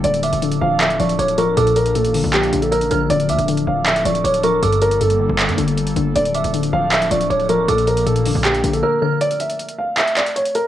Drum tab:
HH |xxxxxx--xxxxxxx-|xxxxxxo-xxxxxxx-|xxxxxx--xxxxxxx-|xxxxxx--xxxxxxx-|
CP |--------x-------|--------x-------|--------x-------|--------x-------|

HH |xxxxxx--xxxxxxx-|xxxxxxo-xxxx----|xxxxxx--xxxxxxx-|
CP |--------x-------|--------x-------|--------x-x-----|